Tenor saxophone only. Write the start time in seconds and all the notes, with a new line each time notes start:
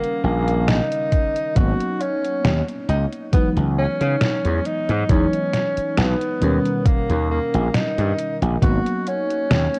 Already playing: A#3
0.25 A#3
0.68 D#4
1.57 F#4
2.01 C#4
2.89 D#4
3.33 B3
3.78 C#4
4.66 D#4
5.10 C#4
5.98 B3
6.87 A#3
7.31 A#3
7.75 D#4
8.63 F#4
9.08 C#4